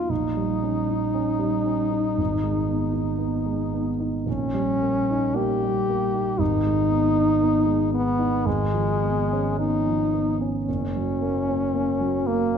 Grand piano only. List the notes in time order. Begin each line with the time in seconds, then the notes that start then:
Already playing: F#3 B3 D#4
0.09 A#1
0.37 G3
0.62 C#4
0.88 D#4
1.14 C#4
1.39 G3
1.66 C#4
1.91 D#4
2.17 G#1
2.44 G#3
2.67 B3
2.93 D#4
3.18 B3
3.46 G#3
3.73 B3
4.00 D#4
4.26 A#1
4.54 G3
4.82 A#3
5.10 D#4
5.35 A#3
5.63 G3
5.89 A#3
6.14 D#4
6.39 G#1
6.63 G#3
6.89 B3
7.15 D#4
7.41 B3
7.66 G#3
7.92 B3
8.19 D#4
8.46 G#1
8.74 F3
9.04 B3
9.32 C#4
9.61 B3
9.87 F3
10.13 B3
10.41 C#4
10.69 F#1
10.96 F#3
11.22 A#3
11.48 C#4
11.74 A#3
12.00 F#3
12.27 A#3
12.54 C#4